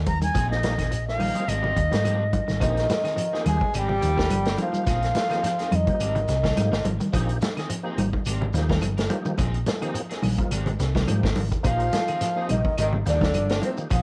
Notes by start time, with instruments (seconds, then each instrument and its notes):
Already playing: fingered electric bass D#2
0.06 clean electric guitar F3, flute A#5, kick, closed hi-hat, high conga, shekere
0.22 clean electric guitar D#3, flute G#5, closed hi-hat, high conga, shekere
0.34 fingered electric bass A#1, clean electric guitar F3 C4 D#4 G#4, kick, closed hi-hat, low conga, claves, shekere
0.49 tonewheel organ F3 A#3 D#4 G4, flute D#5, snare
0.63 snare, closed hi-hat, high conga, shekere
0.78 clean electric guitar D#3 C4 D#4, kick, snare, closed hi-hat, claves, shekere
0.91 clean electric guitar F3, closed hi-hat, shekere
1.08 flute F5, snare
1.18 clean electric guitar D#3, tonewheel organ F3 A#3 D#4 G4, open hi-hat, high conga, claves
1.22 shekere
1.34 clean electric guitar C4 D#4 G#4, closed hi-hat, high conga
1.47 fingered electric bass G#1, clean electric guitar G3 C4 D4 A#4, flute D#5, closed hi-hat, claves, shekere
1.62 clean electric guitar G3 C4 D4 A#4, low conga
1.76 fingered electric bass D#2, clean electric guitar G3, kick, closed hi-hat, shekere
1.90 fingered electric bass G#2, tonewheel organ F3 A#3 D#4 G4, clean electric guitar G3, snare, closed hi-hat, high conga, shekere
2.04 clean electric guitar F3 G3 C4 D4 A#4, closed hi-hat, high conga, claves, shekere
2.33 clean electric guitar F3, kick, closed hi-hat, high conga, shekere
2.48 fingered electric bass G#1, clean electric guitar D#3, snare, high conga, shekere
2.60 fingered electric bass A#1, trombone section D#3, tonewheel organ F3 A#3 D#4 G4, clean electric guitar F3 C4 D#4 G#4, tenor saxophone D#4, ocarina D#5, kick, closed hi-hat, low conga, claves, shekere
2.77 snare, closed hi-hat
2.90 snare, closed hi-hat, high conga, shekere
3.04 clean electric guitar D#3 C4 D#4 G#4, snare, closed hi-hat, claves, shekere
3.16 clean electric guitar F3, closed hi-hat, shekere
3.32 tonewheel organ F3 A#3 D#4 G4, clean electric guitar C4 D#4 G#4, snare
3.45 fingered electric bass D#2, clean electric guitar D#3, trombone section G#3, tenor saxophone G#4, ocarina G#5, closed hi-hat, high conga, claves, shekere
3.61 kick, low conga
3.74 fingered electric bass G#1, clean electric guitar G3 C4 D4 A#4, trombone section G3, tenor saxophone G4, ocarina G5, closed hi-hat, claves, shekere
3.88 clean electric guitar G3, low conga
4.01 fingered electric bass D#2, tonewheel organ F3 A#3 D#4 G4, clean electric guitar G3, closed hi-hat, shekere
4.17 clean electric guitar D#3 C4 D4 A#4, kick, snare, shekere
4.30 fingered electric bass G1, clean electric guitar F3, closed hi-hat, high conga, claves, shekere
4.46 clean electric guitar C4 D4 A#4, snare, closed hi-hat
4.57 tonewheel organ F3 A#3 D#4 G4, clean electric guitar F3, trombone section F3, ocarina F5, closed hi-hat, high conga, shekere
4.62 tenor saxophone F4
4.73 muted clean electric guitar stroke, high conga, shekere
4.86 fingered electric bass A#1, clean electric guitar F3 C4 D#4 G#4, kick, snare, closed hi-hat, low conga, claves, shekere
5.03 snare, closed hi-hat
5.15 snare, closed hi-hat, high conga, shekere
5.30 clean electric guitar D#3 C4 D#4 G#4, tonewheel organ F3 A#3 D#4 G4, snare, closed hi-hat, claves, shekere
5.43 clean electric guitar F3, snare, closed hi-hat, shekere
5.58 clean electric guitar C4 D#4 G#4, snare, closed hi-hat
5.71 fingered electric bass F2, clean electric guitar D#3, trombone section D#3, ocarina D#5, closed hi-hat, high conga, claves, shekere
5.76 tenor saxophone D#4
5.86 tonewheel organ F3 A#3 D#4 G4, kick, closed hi-hat, high conga, low conga
6.00 fingered electric bass G#1, clean electric guitar G3 C4 D4 A#4, closed hi-hat, claves, shekere
6.15 clean electric guitar G3, closed hi-hat, low conga
6.28 fingered electric bass C2, clean electric guitar G3, snare, closed hi-hat, shekere
6.44 clean electric guitar D#3 C4 D4 A#4, kick, snare, high conga, shekere
6.56 fingered electric bass G#2, tonewheel organ F3 A#3 D#4 G4, clean electric guitar F3, snare, closed hi-hat, high conga, claves, shekere
6.72 fingered electric bass G#1, clean electric guitar C4 D4 A#4, snare
6.84 fingered electric bass G#1, clean electric guitar F3, closed hi-hat, high conga, shekere
7.00 clean electric guitar D#3, closed hi-hat, high conga, shekere
7.12 fingered electric bass A#1, tonewheel organ F3 A#3 D#4 G4, clean electric guitar F3 C4 D#4 G#4, kick, closed hi-hat, low conga, claves, shekere
7.29 closed hi-hat
7.41 snare, closed hi-hat, high conga, shekere
7.57 clean electric guitar D#3 C4 D#4 G#4, snare, closed hi-hat, claves, shekere
7.70 clean electric guitar F3, closed hi-hat, shekere
7.83 tonewheel organ F3 A#3 D#4 G4, clean electric guitar D#4 G#4
7.87 clean electric guitar C4
7.98 fingered electric bass G#1, clean electric guitar D#3, closed hi-hat, high conga, claves, shekere
8.13 kick, high conga, low conga
8.25 fingered electric bass G#1, clean electric guitar G3 C4 D4 A#4, closed hi-hat, claves, shekere
8.41 clean electric guitar G3, low conga
8.53 fingered electric bass D#2, tonewheel organ F3 A#3 D#4 G4, clean electric guitar G3, snare, closed hi-hat, shekere
8.69 clean electric guitar D#3 C4 D4 A#4, kick, snare, high conga, shekere
8.81 fingered electric bass G1, clean electric guitar F3, closed hi-hat, high conga, claves, shekere
8.97 clean electric guitar D4 A#4, snare, closed hi-hat
9.09 tonewheel organ F3 A#3 D#4 G4, clean electric guitar F3, closed hi-hat, high conga, shekere
9.25 clean electric guitar D#3, high conga, shekere
9.38 fingered electric bass A#1, clean electric guitar F3 C4 D#4 G#4, kick, closed hi-hat, low conga, claves, shekere
9.54 closed hi-hat
9.66 snare, closed hi-hat, high conga, shekere
9.81 clean electric guitar D#3 C4 D#4 G#4, tonewheel organ F3 A#3 D#4 G4, closed hi-hat, claves, shekere
9.94 clean electric guitar F3, closed hi-hat, shekere
10.10 clean electric guitar C4 D#4 G#4, snare, closed hi-hat
10.23 fingered electric bass A#1, clean electric guitar D#3, open hi-hat, high conga, claves, shekere
10.38 tonewheel organ F3 A#3 D#4 F4, kick, closed hi-hat, high conga, low conga
10.51 fingered electric bass G#1, clean electric guitar G3 C4 D4 A#4, closed hi-hat, claves, shekere
10.66 clean electric guitar G#3, closed hi-hat, low conga
10.79 fingered electric bass C2, clean electric guitar G3, snare, closed hi-hat, shekere
10.95 clean electric guitar D#3 C4 D4 A#4, kick, snare, high conga, shekere
11.07 fingered electric bass G#2, tonewheel organ F3 A#3 D#4 G4, clean electric guitar F3, closed hi-hat, high conga, claves, shekere
11.23 fingered electric bass G#1, clean electric guitar C4 D4 A#4, kick, snare
11.36 fingered electric bass G#1, clean electric guitar F3, open hi-hat, high conga, shekere
11.51 clean electric guitar D#3, kick, closed hi-hat, shekere
11.63 fingered electric bass A#1, tonewheel organ F3 A#3 D#4 G4, clean electric guitar F3 D#4 G#4, trombone section F3, tenor saxophone F4, ocarina F5, muted clean electric guitar stroke, kick, closed hi-hat, low conga, claves, shekere
11.80 closed hi-hat
11.93 snare, closed hi-hat, high conga, shekere
12.08 clean electric guitar D#3 C4 D#4 G#4, closed hi-hat, claves, shekere
12.21 clean electric guitar F3, snare, closed hi-hat, shekere
12.36 tonewheel organ F3 A#3 D#4 G4, clean electric guitar C4 D#4 G#4
12.49 fingered electric bass A#1, clean electric guitar C3, trombone section D#3, tenor saxophone D#4, ocarina D#5, closed hi-hat, high conga, claves, shekere
12.65 kick, low conga
12.78 fingered electric bass G#1, trombone section D#3, clean electric guitar G3 C4 D4, tenor saxophone D#4, ocarina D#5, muted clean electric guitar stroke, closed hi-hat, claves, shekere
12.93 clean electric guitar G3, low conga
13.06 fingered electric bass D#2, trombone section D3, tonewheel organ F3 A#3 D#4 G4, clean electric guitar G3, tenor saxophone D4, ocarina D5, snare, closed hi-hat, shekere
13.21 clean electric guitar D#3 C4 D4 A#4, kick, snare, high conga, shekere
13.34 fingered electric bass G1, clean electric guitar F3, closed hi-hat, high conga, claves, shekere
13.50 clean electric guitar C4 D4 A#4, snare, closed hi-hat
13.61 trombone section C3, tonewheel organ F3 A#3 D#4 G4, clean electric guitar F3, tenor saxophone C4, ocarina C5, closed hi-hat, high conga, shekere
13.77 clean electric guitar D#3, shekere
13.90 fingered electric bass A#1, clean electric guitar F3 C4 D#4 G#4, trombone section F3, tenor saxophone F4, ocarina F5, kick, closed hi-hat, low conga, claves, shekere